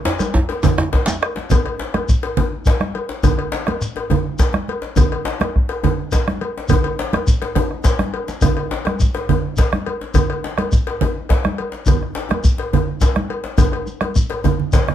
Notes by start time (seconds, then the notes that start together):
0.05 djembe slap, djembe tone
0.19 cowbell, djembe tone, high conga, shekere
0.34 bombo low, djembe tone
0.49 cowbell, djembe slap
0.63 cowbell, djembe tone, low conga, djembe bass, shekere
0.78 bombo rim, djembe slap, djembe tone, high conga
0.93 bombo rim, bombo low, cowbell, djembe slap, high conga
1.06 bombo rim, djembe slap, djembe tone, high conga, shekere
1.22 bombo rim, cowbell
1.36 djembe slap, high conga
1.50 bombo low, cowbell, djembe tone, djembe bass, low conga, shekere
1.66 bombo rim, cowbell
1.79 djembe slap
1.94 bombo rim, cowbell, djembe tone, high conga
2.09 bombo rim, bombo low, djembe slap, shekere
2.23 cowbell, djembe slap
2.37 cowbell, high conga, djembe tone, low conga, djembe bass
2.65 bombo low, cowbell, djembe slap, shekere
2.81 bombo rim, high conga, djembe tone
2.95 cowbell, djembe slap, high conga
3.09 djembe slap
3.23 bombo low, cowbell, djembe tone, djembe bass, low conga, shekere
3.38 bombo rim, cowbell
3.52 djembe slap
3.67 bombo rim, cowbell, djembe tone, high conga
3.81 bombo rim, djembe slap, shekere
3.96 cowbell, djembe slap
4.10 cowbell, djembe tone, high conga, djembe bass, low conga
4.39 bombo low, cowbell, djembe slap, shekere
4.53 bombo rim, djembe tone, high conga
4.68 cowbell, djembe slap, high conga
4.82 djembe slap
4.96 bombo low, cowbell, djembe tone, djembe bass, low conga, shekere
5.12 bombo rim, cowbell
5.25 djembe slap
5.40 bombo rim, cowbell, djembe tone, high conga
5.56 bombo rim, bombo low
5.69 cowbell, djembe slap
5.83 cowbell, djembe tone, high conga, djembe bass, low conga
6.12 bombo low, cowbell, djembe slap, shekere
6.28 bombo rim, high conga, djembe tone
6.41 cowbell, djembe slap, high conga
6.58 djembe slap
6.68 bombo low, cowbell, djembe slap, high conga, djembe tone, low conga, djembe bass, shekere
6.84 cowbell
6.99 djembe slap, high conga
7.13 bombo rim, cowbell, djembe slap, djembe tone, high conga
7.27 bombo low, shekere
7.42 cowbell, djembe slap, high conga
7.55 cowbell, djembe tone, high conga, djembe bass, low conga
7.70 bombo rim, djembe slap
7.84 bombo rim, bombo low, cowbell, djembe slap, high conga, shekere
7.99 bombo rim, djembe slap, djembe tone, high conga
8.14 cowbell, high conga
8.28 djembe slap, high conga, shekere
8.41 bombo low, cowbell, djembe tone, djembe bass, low conga, shekere
8.57 bombo rim, cowbell
8.71 djembe slap
8.85 bombo rim, cowbell, djembe tone, high conga
9.00 bombo rim, bombo low, djembe slap, shekere
9.14 cowbell, djembe slap
9.29 cowbell, djembe tone, high conga, djembe bass, low conga
9.57 bombo low, cowbell, djembe slap, shekere
9.72 bombo rim, djembe tone, high conga
9.86 cowbell, djembe slap, high conga
10.01 djembe slap
10.14 bombo low, cowbell, djembe tone, djembe bass, low conga, shekere
10.30 bombo rim, cowbell
10.44 djembe slap
10.58 bombo rim, cowbell, djembe tone, high conga
10.72 bombo rim, bombo low, djembe slap, shekere
10.87 cowbell, djembe slap
11.01 cowbell, high conga, djembe tone, low conga, djembe bass
11.29 bombo low, cowbell, djembe slap
11.44 bombo rim, djembe tone, high conga
11.58 cowbell, djembe slap, high conga
11.72 djembe slap
11.86 bombo low, cowbell, djembe tone, djembe bass, low conga, shekere
12.03 bombo rim
12.15 djembe slap
12.29 bombo rim, cowbell, djembe tone, high conga
12.44 bombo rim, bombo low, djembe slap, shekere
12.58 cowbell, djembe slap
12.73 cowbell, djembe tone, high conga, djembe bass, low conga
13.01 bombo low, cowbell, djembe slap, shekere
13.15 bombo rim, djembe tone, high conga
13.30 cowbell, djembe slap, high conga
13.44 djembe slap
13.58 bombo rim, bombo low, cowbell, djembe tone, high conga, djembe bass, low conga, shekere
13.72 bombo rim, cowbell, djembe slap
13.87 high conga, shekere
14.01 bombo rim, cowbell, djembe slap, high conga, djembe tone
14.15 bombo rim, bombo low, shekere
14.30 cowbell, djembe slap
14.44 bombo rim, cowbell, djembe tone, djembe bass, low conga, shekere
14.60 low conga
14.72 bombo rim, bombo low, cowbell, djembe slap, low conga, shekere
14.88 bombo rim, djembe tone, low conga